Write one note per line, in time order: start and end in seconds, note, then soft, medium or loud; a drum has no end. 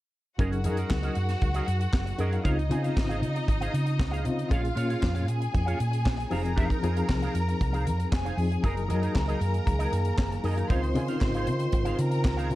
0.38 0.66 F#1 medium
0.38 0.54 F#3 medium
0.38 0.58 C#4 medium
0.38 0.54 D#4 medium
0.38 2.41 F#4 medium
0.38 0.51 G#4 medium
0.38 0.55 G#4 medium
0.38 0.51 A#4 medium
0.38 0.55 A#4 medium
0.38 0.50 D#5 medium
0.38 2.41 F#5 medium
0.38 kick loud
0.38 closed hi-hat medium
0.51 muted clean electric guitar stroke soft
0.51 closed hi-hat soft
0.64 0.82 F#2 medium
0.64 1.27 F#3 medium
0.64 0.77 C#4 medium
0.64 1.27 D#4 medium
0.64 1.27 G#4 medium
0.64 0.77 G#4 medium
0.64 1.27 A#4 medium
0.64 0.76 A#4 medium
0.64 0.75 D#5 medium
0.64 closed hi-hat medium
0.76 0.89 C#4 soft
0.76 0.90 G#4 medium
0.76 0.90 A#4 medium
0.76 0.90 D#5 medium
0.76 closed hi-hat soft
0.91 1.08 C#2 medium
0.91 muted clean electric guitar stroke soft
0.91 kick medium
0.91 snare loud
0.91 clap medium
1.03 1.16 C#4 medium
1.03 1.16 G#4 medium
1.03 1.17 A#4 medium
1.03 1.18 D#5 medium
1.03 closed hi-hat soft
1.15 1.34 F#2 medium
1.15 muted clean electric guitar stroke soft
1.15 closed hi-hat medium
1.29 muted clean electric guitar stroke soft
1.29 snare soft
1.29 closed hi-hat soft
1.42 1.60 C#2 medium
1.42 muted clean electric guitar stroke soft
1.42 kick medium
1.42 closed hi-hat medium
1.54 1.66 C#4 medium
1.54 1.67 G#4 medium
1.54 1.67 A#4 medium
1.54 1.67 D#5 medium
1.54 closed hi-hat soft
1.67 1.85 F#2 medium
1.67 muted clean electric guitar stroke soft
1.67 closed hi-hat medium
1.80 muted clean electric guitar stroke medium
1.80 closed hi-hat soft
1.93 2.11 F#1 medium
1.93 muted clean electric guitar stroke soft
1.93 kick loud
1.93 snare loud
1.93 clap medium
2.06 muted clean electric guitar stroke soft
2.06 closed hi-hat soft
2.18 2.37 F#2 medium
2.18 2.34 F#3 medium
2.18 2.32 C#4 medium
2.18 2.34 D#4 medium
2.18 2.35 G#4 medium
2.18 2.32 G#4 medium
2.18 2.35 A#4 medium
2.18 2.31 A#4 medium
2.18 2.31 D#5 medium
2.18 closed hi-hat medium
2.31 2.43 C#4 soft
2.31 2.43 G#4 soft
2.31 2.45 A#4 soft
2.31 2.45 F5 soft
2.31 closed hi-hat soft
2.44 2.71 C#2 loud
2.44 2.60 C#3 medium
2.44 2.60 C4 medium
2.44 2.63 D#4 medium
2.44 4.47 D#4 medium
2.44 2.61 D#4 medium
2.44 2.61 F4 medium
2.44 2.58 G#4 medium
2.44 2.57 C5 medium
2.44 4.47 D#5 medium
2.44 2.57 F5 medium
2.44 kick medium
2.44 closed hi-hat medium
2.58 muted clean electric guitar stroke soft
2.58 closed hi-hat soft
2.70 3.32 C#3 medium
2.70 2.88 C#3 medium
2.70 3.33 C4 medium
2.70 3.33 D#4 medium
2.70 2.85 D#4 medium
2.70 3.33 F4 medium
2.70 2.84 G#4 medium
2.70 2.84 C5 medium
2.70 2.83 G#5 medium
2.70 closed hi-hat medium
2.84 2.96 D#4 soft
2.84 2.96 G#4 medium
2.84 2.97 C5 medium
2.84 2.97 F5 medium
2.84 closed hi-hat soft
2.97 3.23 G#1 medium
2.97 muted clean electric guitar stroke soft
2.97 kick medium
2.97 snare medium
2.97 clap medium
3.09 3.20 D#4 medium
3.09 3.21 G#4 medium
3.09 3.21 C5 medium
3.09 3.21 F5 medium
3.09 closed hi-hat soft
3.21 3.40 C#3 loud
3.21 muted clean electric guitar stroke soft
3.21 closed hi-hat medium
3.35 muted clean electric guitar stroke soft
3.35 closed hi-hat soft
3.48 3.66 G#1 medium
3.48 muted clean electric guitar stroke soft
3.48 kick medium
3.48 closed hi-hat medium
3.61 3.73 D#4 medium
3.61 3.73 G#4 medium
3.61 3.73 C5 medium
3.61 3.74 F5 medium
3.61 closed hi-hat soft
3.74 4.01 C#3 medium
3.74 muted clean electric guitar stroke soft
3.74 closed hi-hat medium
3.86 muted clean electric guitar stroke soft
3.86 closed hi-hat soft
3.99 4.27 C#2 medium
3.99 muted clean electric guitar stroke soft
3.99 kick loud
3.99 snare loud
3.99 clap medium
4.11 4.24 D#4 medium
4.11 4.25 G#4 medium
4.11 4.25 C5 medium
4.11 4.25 F5 medium
4.11 closed hi-hat soft
4.25 4.40 C#3 medium
4.25 4.43 C#3 loud
4.25 4.41 C4 medium
4.25 4.41 D#4 medium
4.25 4.41 F4 medium
4.25 muted clean electric guitar stroke soft
4.25 closed hi-hat medium
4.37 muted clean electric guitar stroke soft
4.37 closed hi-hat soft
4.50 4.69 A#1 loud
4.50 4.66 A#2 medium
4.50 4.66 A#3 medium
4.50 4.67 C#4 medium
4.50 4.69 F4 medium
4.50 5.26 F4 medium
4.50 4.62 G#4 medium
4.50 4.67 G#4 medium
4.50 4.62 C#5 medium
4.50 5.26 F5 medium
4.50 4.61 F5 loud
4.50 kick loud
4.50 closed hi-hat medium
4.63 muted clean electric guitar stroke soft
4.63 closed hi-hat soft
4.75 5.39 A#2 medium
4.75 4.94 A#2 loud
4.75 5.39 A#3 medium
4.75 5.39 C#4 medium
4.75 4.90 F4 medium
4.75 5.39 F4 medium
4.75 4.89 G#4 medium
4.75 4.88 C#5 medium
4.75 4.88 F5 medium
4.75 closed hi-hat medium
4.89 5.00 F4 soft
4.89 5.01 G#4 medium
4.89 5.01 C#5 medium
4.89 5.01 F5 medium
4.89 closed hi-hat soft
5.02 5.29 F2 medium
5.02 muted clean electric guitar stroke soft
5.02 kick medium
5.02 snare loud
5.02 clap medium
5.15 5.25 F4 medium
5.15 5.26 G#4 medium
5.15 5.27 C#5 medium
5.15 5.27 F5 medium
5.15 closed hi-hat soft
5.27 5.46 A#2 loud
5.27 6.29 G#4 medium
5.27 6.29 G#5 medium
5.27 muted clean electric guitar stroke soft
5.27 closed hi-hat medium
5.40 muted clean electric guitar stroke soft
5.40 closed hi-hat soft
5.53 5.72 F2 medium
5.53 muted clean electric guitar stroke soft
5.53 kick medium
5.53 closed hi-hat medium
5.66 5.78 F4 medium
5.66 5.78 G#4 medium
5.66 5.79 C#5 medium
5.66 5.79 F5 medium
5.66 closed hi-hat soft
5.80 6.07 A#2 medium
5.80 closed hi-hat medium
5.91 muted clean electric guitar stroke soft
5.91 closed hi-hat soft
6.04 6.23 A#1 medium
6.04 muted clean electric guitar stroke soft
6.04 kick loud
6.04 snare loud
6.04 clap medium
6.17 muted clean electric guitar stroke soft
6.17 closed hi-hat soft
6.30 6.67 F1 medium
6.30 6.72 F3 medium
6.30 6.72 C4 medium
6.30 6.44 D#4 medium
6.30 6.73 D#4 medium
6.30 6.38 G4 medium
6.30 6.43 G#4 medium
6.30 8.08 A#4 medium
6.30 6.43 C5 medium
6.30 6.43 F5 medium
6.30 8.09 A#5 medium
6.30 open hi-hat medium
6.38 6.76 G#4 medium
6.43 6.55 D#4 soft
6.43 6.55 G#4 soft
6.43 6.56 C5 soft
6.43 6.57 G#5 soft
6.43 closed hi-hat soft
6.56 6.77 D#4 medium
6.56 6.69 G#4 medium
6.56 6.69 C5 medium
6.56 6.68 F5 medium
6.56 kick loud
6.56 closed hi-hat medium
6.70 muted clean electric guitar stroke soft
6.70 kick medium
6.70 closed hi-hat soft
6.83 7.01 F2 medium
6.83 7.45 F3 medium
6.83 7.46 C4 medium
6.83 6.97 D#4 medium
6.83 7.46 D#4 medium
6.83 6.96 G#4 medium
6.83 7.46 G#4 medium
6.83 6.96 C5 medium
6.83 6.96 G#5 medium
6.83 closed hi-hat medium
6.97 7.08 D#4 soft
6.97 7.09 G#4 medium
6.97 7.09 C5 medium
6.97 7.09 F5 medium
6.97 closed hi-hat soft
7.09 7.27 C2 medium
7.09 muted clean electric guitar stroke soft
7.09 kick medium
7.09 snare medium
7.09 clap medium
7.22 7.34 D#4 medium
7.22 7.34 G#4 medium
7.22 7.35 C5 medium
7.22 7.35 F5 medium
7.22 closed hi-hat soft
7.35 7.52 F2 medium
7.35 muted clean electric guitar stroke soft
7.35 closed hi-hat medium
7.48 muted clean electric guitar stroke soft
7.48 closed hi-hat soft
7.61 7.88 C2 medium
7.61 muted clean electric guitar stroke soft
7.61 kick medium
7.61 closed hi-hat medium
7.73 7.85 D#4 medium
7.73 7.85 G#4 medium
7.73 7.86 C5 medium
7.73 7.86 F5 medium
7.73 closed hi-hat soft
7.86 8.04 F2 medium
7.86 muted clean electric guitar stroke soft
7.86 closed hi-hat medium
7.98 muted clean electric guitar stroke soft
7.98 closed hi-hat soft
8.11 8.30 F1 medium
8.11 8.63 G#4 medium
8.11 8.63 G#5 medium
8.11 muted clean electric guitar stroke soft
8.11 kick loud
8.11 snare loud
8.11 clap medium
8.25 8.37 D#4 medium
8.25 8.37 G#4 medium
8.25 8.37 C5 medium
8.25 8.38 F5 medium
8.25 closed hi-hat soft
8.37 8.55 F2 medium
8.37 8.53 F3 medium
8.37 8.54 C4 medium
8.37 8.54 D#4 medium
8.37 8.54 G#4 medium
8.37 muted clean electric guitar stroke soft
8.37 open hi-hat medium
8.51 muted clean electric guitar stroke soft
8.51 closed hi-hat soft
8.63 8.91 F#1 medium
8.63 12.55 D#3 medium
8.63 8.80 F#3 medium
8.63 10.68 A#3 medium
8.63 8.82 D#4 medium
8.63 8.80 D#4 medium
8.63 8.76 G#4 medium
8.63 10.68 G#4 medium
8.63 8.80 G#4 medium
8.63 10.66 A#4 medium
8.63 8.75 A#4 medium
8.63 8.80 A#4 medium
8.63 8.74 D#5 medium
8.63 10.66 A#5 medium
8.63 kick medium
8.63 closed hi-hat medium
8.75 muted clean electric guitar stroke soft
8.75 closed hi-hat soft
8.88 9.07 F#2 medium
8.88 9.51 F#3 medium
8.88 9.02 D#4 medium
8.88 9.52 D#4 medium
8.88 9.02 G#4 medium
8.88 9.52 G#4 medium
8.88 9.01 A#4 medium
8.88 9.52 A#4 medium
8.88 9.00 D#5 medium
8.88 closed hi-hat medium
9.02 9.13 D#4 medium
9.02 9.14 G#4 medium
9.02 9.15 A#4 medium
9.02 9.15 D#5 medium
9.02 closed hi-hat soft
9.14 9.33 C#2 medium
9.14 muted clean electric guitar stroke soft
9.14 kick medium
9.14 snare medium
9.14 clap medium
9.28 9.39 D#4 medium
9.28 9.40 G#4 medium
9.28 9.41 A#4 medium
9.28 9.41 D#5 medium
9.28 closed hi-hat soft
9.40 9.59 F#2 medium
9.40 muted clean electric guitar stroke soft
9.40 closed hi-hat medium
9.54 muted clean electric guitar stroke soft
9.54 closed hi-hat soft
9.66 9.85 C#2 loud
9.66 muted clean electric guitar stroke soft
9.66 kick medium
9.66 closed hi-hat medium
9.79 9.91 D#4 medium
9.79 9.92 G#4 medium
9.79 9.93 A#4 medium
9.79 9.93 D#5 medium
9.79 closed hi-hat medium
9.92 10.10 F#2 medium
9.92 muted clean electric guitar stroke soft
9.92 closed hi-hat medium
10.05 muted clean electric guitar stroke soft
10.05 closed hi-hat soft
10.18 10.36 F#1 medium
10.18 muted clean electric guitar stroke soft
10.18 kick loud
10.18 snare loud
10.18 clap loud
10.32 muted clean electric guitar stroke soft
10.32 closed hi-hat soft
10.44 10.62 F#2 medium
10.44 10.60 F#3 medium
10.44 10.57 D#4 medium
10.44 10.59 D#4 medium
10.44 10.57 G#4 medium
10.44 10.60 G#4 medium
10.44 10.60 A#4 medium
10.44 10.56 A#4 medium
10.44 10.56 D#5 medium
10.44 open hi-hat medium
10.57 10.69 D#4 soft
10.57 10.70 G#4 soft
10.57 10.71 A#4 soft
10.57 10.71 F5 medium
10.57 closed hi-hat soft
10.69 10.97 C#2 medium
10.69 10.86 C#3 medium
10.69 12.55 C4 medium
10.69 10.86 C4 medium
10.69 10.89 D#4 medium
10.69 10.86 D#4 medium
10.69 12.55 F4 medium
10.69 10.86 F4 medium
10.69 10.83 G#4 medium
10.69 11.96 C5 medium
10.69 10.82 C5 medium
10.69 10.82 F5 medium
10.69 11.96 C6 medium
10.69 kick loud
10.69 closed hi-hat medium
10.83 muted clean electric guitar stroke soft
10.83 closed hi-hat soft
10.95 11.58 C#3 medium
10.95 11.13 C#3 medium
10.95 11.58 C4 medium
10.95 11.09 D#4 medium
10.95 11.58 D#4 medium
10.95 11.59 F4 medium
10.95 11.08 G#4 medium
10.95 11.08 C5 medium
10.95 11.08 G#5 medium
10.95 closed hi-hat medium
11.08 11.21 D#4 medium
11.08 11.21 G#4 medium
11.08 11.22 C5 medium
11.08 11.22 F5 medium
11.08 closed hi-hat soft
11.21 11.48 G#1 medium
11.21 muted clean electric guitar stroke soft
11.21 kick medium
11.21 snare loud
11.21 clap medium
11.34 11.46 D#4 medium
11.34 11.47 G#4 medium
11.34 11.48 C5 medium
11.34 11.48 F5 medium
11.34 closed hi-hat soft
11.47 11.65 C#3 loud
11.47 muted clean electric guitar stroke soft
11.47 closed hi-hat medium
11.60 muted clean electric guitar stroke medium
11.60 closed hi-hat soft
11.72 11.91 G#1 loud
11.72 muted clean electric guitar stroke soft
11.72 kick medium
11.72 closed hi-hat medium
11.85 11.97 D#4 medium
11.85 11.98 G#4 medium
11.85 11.98 C5 medium
11.85 11.99 F5 medium
11.85 closed hi-hat soft
11.98 12.26 C#3 loud
11.98 12.55 A#4 medium
11.98 12.55 A#5 medium
11.98 muted clean electric guitar stroke soft
11.98 closed hi-hat medium
12.11 muted clean electric guitar stroke medium
12.11 closed hi-hat soft
12.24 12.52 C#2 medium
12.24 muted clean electric guitar stroke soft
12.24 kick loud
12.24 snare loud
12.24 clap medium
12.37 12.49 D#4 medium
12.37 12.50 G#4 medium
12.37 12.50 C5 medium
12.37 12.50 F5 medium
12.37 closed hi-hat soft
12.50 12.55 C#3 medium
12.50 12.55 C#3 loud
12.50 12.55 C4 medium
12.50 12.55 D#4 medium
12.50 muted clean electric guitar stroke soft
12.50 open hi-hat medium